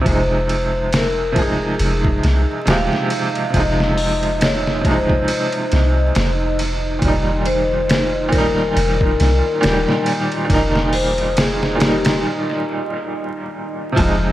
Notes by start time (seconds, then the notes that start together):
0.01 C3 F3
0.06 F1 G#3 D#4 C5 D#5, kick, ride
0.11 D#4
0.49 ride
0.93 A#4, snare, ride
1.32 C3 F3, kick, ride
1.39 G#3 D#4 G#4
1.79 F1, ride
2.05 kick
2.23 C2, snare, ride
2.65 D#1 C3 F3 G#3, snare, ride
2.70 G4 F5
2.93 snare
3.10 ride
3.35 ride
3.50 C3 F3, kick, ride
3.55 F1 G#3 D#5
3.59 D#4
3.80 snare
3.97 open hi-hat
4.23 ride
4.41 C#5, snare, ride
4.67 snare
4.81 C3 F3, kick, ride
4.86 G#3 D#4 C5
5.09 kick
5.28 ride
5.52 ride
5.72 C2, snare, ride
6.15 F1, snare, ride
6.59 ride
6.99 F1 A#2 D#3, kick, ride
7.05 G3 D#4
7.45 C5, ride
7.89 snare, ride
8.29 A#2 D#3 A#4, kick, ride
8.35 G3 D#4
8.75 F1 A#4, ride
9.01 kick
9.20 C2, snare, ride
9.61 D#1 A#2 D#3 G3, snare, ride
9.65 G4
9.89 snare
10.06 ride
10.32 ride
10.45 A#2 D#3
10.50 F1 A#3, kick, ride
10.54 D#4
10.76 snare
10.93 C5, open hi-hat
11.18 ride
11.37 G#4, snare, ride
11.63 snare
11.75 A#2 D#3
11.80 G3 G4, snare, ride
11.85 D#4
12.05 snare, ride
13.92 C3 F3
13.97 F1 F3 G#3 G5, kick, ride
14.02 D#4